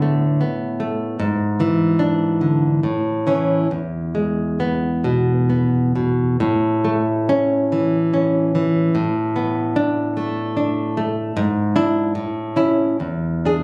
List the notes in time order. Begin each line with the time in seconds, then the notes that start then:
Already playing: A2 D3 B3
0.02 A3
0.41 B3
0.80 A3
1.20 G#2
1.60 E3
1.99 D4
2.41 D3
2.83 A2
3.27 E3 C#4
3.71 E2
4.15 G#3
4.60 B3
5.04 B2
5.50 B3
5.96 B2
6.40 A2
6.85 A3
7.29 C#4
7.72 E3
8.14 C#4
8.55 E3
8.95 A2
9.36 B3
9.76 D4
10.17 A3
10.57 D4
10.97 A3
11.37 G#2
11.76 D4 E4
12.15 A2
12.56 C#4 E4
13.00 E2
13.45 D4 G#4